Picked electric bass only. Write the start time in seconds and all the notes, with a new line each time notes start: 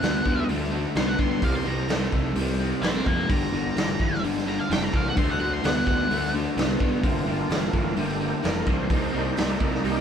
0.02 D2
0.26 D2
0.49 D2
0.95 C2
1.19 G2
1.43 C2
1.65 C2
1.88 C2
2.13 C2
2.36 C2
2.82 A#1
3.06 F2
3.29 G1
3.52 G1
3.76 G1
4.00 G1
4.23 G1
4.70 F1
4.93 C2
5.17 D2
5.40 D2
5.64 D2
5.86 D2
6.10 D2
6.57 C2
6.80 G2
7.04 G1
7.27 G1
7.50 G1
7.73 G1
7.97 G1
8.44 F1
8.67 C2
8.90 C2
9.14 C2
9.37 C2
9.60 C2
9.84 C2